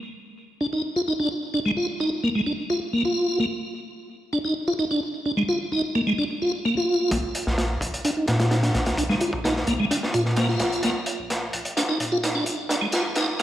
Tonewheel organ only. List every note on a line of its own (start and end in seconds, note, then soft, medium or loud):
0.61 0.67 D4 medium
0.73 0.82 D#4 medium
0.96 1.02 F4 medium
1.08 1.13 D#4 medium
1.20 1.29 D4 medium
1.54 1.60 D4 medium
1.66 1.71 G#3 medium
1.77 1.87 F4 medium
2.00 2.10 D#4 loud
2.24 2.29 A#3 medium
2.35 2.41 G#3 medium
2.46 2.52 D4 medium
2.70 2.80 F4 medium
2.93 3.03 A#3 medium
3.05 3.39 F4 medium
3.40 3.46 A#3 medium
4.33 4.39 D4 medium
4.45 4.54 D#4 medium
4.68 4.73 F4 medium
4.79 4.85 D#4 loud
4.91 5.00 D4 medium
5.26 5.32 D4 medium
5.37 5.43 G#3 loud
5.49 5.59 F4 medium
5.72 5.82 D#4 loud
5.95 6.01 A#3 medium
6.07 6.13 G#3 medium
6.18 6.24 D4 medium
6.42 6.52 F4 medium
6.65 6.75 A#3 medium
6.77 7.11 F4 medium
7.12 7.18 A#3 medium
8.05 8.11 D4 medium
8.17 8.26 D#4 medium
8.40 8.46 F4 loud
8.51 8.57 D#4 loud
8.63 8.72 D4 medium
8.98 9.04 D4 medium
9.09 9.15 G#3 loud
9.21 9.31 F4 medium
9.44 9.54 D#4 loud
9.67 9.73 A#3 medium
9.80 9.85 G#3 medium
9.91 9.97 D4 medium
10.14 10.24 F4 medium
10.37 10.47 A#3 medium
10.49 10.83 F4 medium
10.84 10.90 A#3 medium
11.77 11.83 D4 medium
11.89 11.98 D#4 medium
12.12 12.18 F4 loud
12.23 12.29 D#4 loud
12.35 12.45 D4 medium
12.70 12.76 D4 medium
12.81 12.87 G#3 loud
12.93 13.03 F4 medium
13.17 13.26 D#4 loud